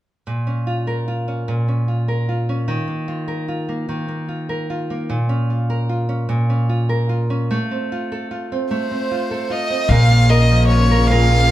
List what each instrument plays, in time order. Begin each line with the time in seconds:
0.27 nylon-string guitar A#2
0.47 nylon-string guitar C#4
0.67 nylon-string guitar F4
0.87 nylon-string guitar A#4
1.08 nylon-string guitar F4
1.28 nylon-string guitar C#4
1.48 nylon-string guitar A#2
1.68 nylon-string guitar C#4
1.88 nylon-string guitar F4
2.08 nylon-string guitar A#4
2.29 nylon-string guitar F4
2.49 nylon-string guitar C#4
2.68 nylon-string guitar D#3
2.88 nylon-string guitar A#3
3.08 nylon-string guitar F4
3.28 nylon-string guitar A#4
3.48 nylon-string guitar F4
3.69 nylon-string guitar A#3
3.89 nylon-string guitar D#3
4.08 nylon-string guitar A#3
4.29 nylon-string guitar F4
4.49 nylon-string guitar A#4
4.70 nylon-string guitar F4
4.90 nylon-string guitar A#3
5.10 nylon-string guitar A#2
5.29 nylon-string guitar C#4
5.50 nylon-string guitar F4
5.70 nylon-string guitar A#4
5.89 nylon-string guitar F4
6.09 nylon-string guitar C#4
6.29 nylon-string guitar A#2
6.50 nylon-string guitar C#4
6.69 nylon-string guitar F4
6.89 nylon-string guitar A#4
7.09 nylon-string guitar F4
7.30 nylon-string guitar C#4
7.51 nylon-string guitar A3
7.71 nylon-string guitar C4
7.92 nylon-string guitar F4
8.12 nylon-string guitar A4
8.31 nylon-string guitar F4
8.52 nylon-string guitar C4
8.71 nylon-string guitar A3, violin C5
8.91 nylon-string guitar C4
9.11 nylon-string guitar F4
9.31 nylon-string guitar A4
9.50 nylon-string guitar F4, violin D#5
9.70 nylon-string guitar C4
9.87 upright bass A#1, nylon-string guitar A#2, string section C#3 F3 A#3, violin F5
9.91 nylon-string guitar A#4
10.11 nylon-string guitar F4
10.29 nylon-string guitar A#4, violin D#5
10.51 nylon-string guitar F3
10.68 nylon-string guitar F4, violin C#5
10.91 nylon-string guitar A#4
11.07 nylon-string guitar A#2, violin F5
11.12 nylon-string guitar A#4
11.31 nylon-string guitar F4